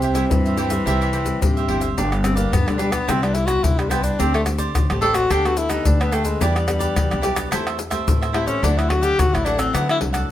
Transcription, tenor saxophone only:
Already playing: C3
0.30 E3
1.42 C3
2.23 C4
2.36 A#3
2.53 B3
2.68 D3
2.79 G3
2.92 B3
3.09 C4
3.23 D4
3.34 E4
3.46 F#4
3.63 E4
3.79 G3
3.90 B3
4.03 D4
4.20 C4
4.35 A3
5.02 A4
5.15 F#4
5.31 G4
5.46 F#4
5.58 E4
5.70 D#4
5.86 D4
6.01 B3
6.13 A3
6.26 G#3
6.42 G3
8.34 E4
8.47 C#4
8.63 D4
8.78 E4
8.89 F#4
9.03 G4
9.19 F#4
9.34 E4
9.45 D4
9.59 C4
9.75 B3
9.90 E4

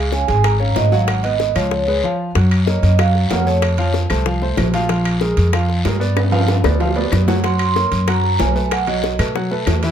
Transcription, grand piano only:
0.12 C#4 C#5 F5
0.27 G#3 G#4 G#5
0.60 C#4 C#5 F5
0.92 F#3 F#4 F#5
1.24 B3 B4 D#5
1.56 F3 F4 F5
1.88 G#3 G#4 B4
2.03 F3 F4 F5
2.35 F#3 F#4 F#5
2.67 A#3 A#4 C#5
2.99 F#3 F#4 F5
3.30 A#3 A#4 C#5
3.46 A3 A4 C#5
3.78 F3 F4 F5
4.10 A3 A4 C5
4.26 F3 F4 F5
4.42 A3 A4 C5
4.74 F3 F4 F5
4.90 F3 F4 F5
5.21 G#3 G#4 A#4
5.53 F3 F4 F5
5.85 G#3 G#4 A#4
6.00 B3 B4 D5
6.32 F3 F4 F5
6.64 B3 B4 D5
6.80 F3 F4 F5
6.96 B3 B4 D5
7.28 F#3 F#4 F#5
7.44 F#3 F#4 F#5
7.76 A#3 A#4 C#5
8.08 F#3 F#4 F#5
8.40 A#3 A#4 C#5
8.55 A3 A4 B4
8.87 F#3 F#4 F#5
9.19 A3 A4 B4
9.35 F#3 F#4 F#5
9.51 A3 A4 B4
9.83 E3 E4 E5

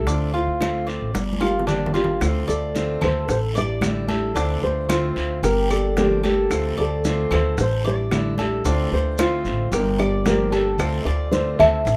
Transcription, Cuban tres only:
0.07 D4
0.34 F4
0.87 D5
1.41 F4
1.67 D4
1.94 F4
2.48 D5
3.01 A4
3.55 D5
4.09 A4
4.36 D4
4.89 F4
5.43 G4
5.70 D5
6.23 A4
6.77 D5
7.31 A4
7.85 D5
8.39 A4
8.65 D4
9.19 F4
9.72 G4
9.99 D5
10.52 A4
11.06 D5
11.60 A4

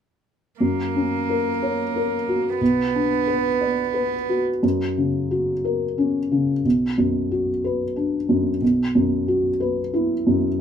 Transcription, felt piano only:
0.60 F#2
0.95 C#4
1.29 A#4
1.63 C#5
1.96 A#4
2.29 F#4
2.61 B1
2.95 D4
3.27 B4
3.61 D5
3.94 B4
4.29 F#4
4.63 F#2
4.97 C#3
5.31 F#4
5.64 A#4
5.98 C#4
6.31 C#3
6.64 B1
6.98 F#2
7.31 F#4
7.64 B4
7.96 D4
8.29 F#2
8.62 B1
8.95 F#2
9.28 F#4
9.60 B4
9.94 E4
10.27 F#2

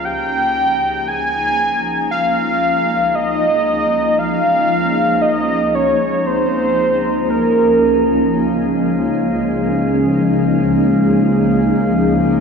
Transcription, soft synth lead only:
0.05 G5
1.08 G#5
2.11 F5
3.15 D#5
4.19 F5
5.22 D#5
5.75 C#5
6.27 C5
7.30 A#4

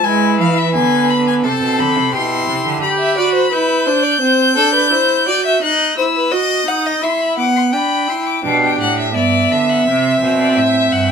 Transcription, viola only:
0.05 E4
0.76 B3
1.45 C4
2.14 E4
2.82 G4
3.17 F#4
3.51 E4
3.87 D4
4.21 C4
4.56 D4
4.90 E4
5.27 F#4
5.62 D#4
5.98 E4
6.32 F#4
6.66 D#4
7.01 E4
7.37 B3
7.73 D4
8.08 E4
8.44 D4
9.14 B3
9.87 C4

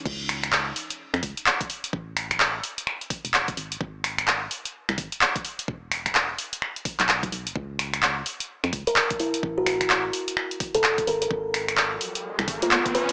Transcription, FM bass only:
0.05 C#2
1.14 F2
1.23 C#2
1.93 A1
3.25 E1
3.57 G#1
3.81 G#1
4.89 C2
4.98 G#1
5.68 E1
7.00 B1
7.23 B1
7.32 B1
7.46 E1
7.56 C#2
8.64 F2
8.73 C#2
9.43 A1
10.75 E1
11.07 G#1
11.31 G#1
12.39 C2
12.48 G#1

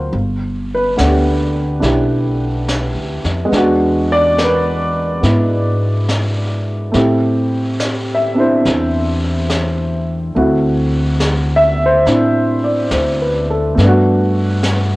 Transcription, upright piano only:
Already playing: F#3 A#3 C4 F4 F#4 C5 F5
0.75 B4
0.96 A3 B3 D4 F#5
1.07 G4
1.80 D4 E4 G4
3.45 G#3 B3
3.53 D4 F#4
4.12 D5
4.38 A#4
4.43 B4
5.20 B3 E4
6.92 A3 C4 E4
6.96 G4
8.14 E5
8.34 C4 D4 E4
8.40 C5
10.35 A3 C4 E4 F#4
11.56 E5
11.86 C5
12.06 C4 D4 E4
12.64 D5
12.93 C5
13.22 B4
13.50 A4
13.75 A3
13.79 B3 D4
13.87 F#4

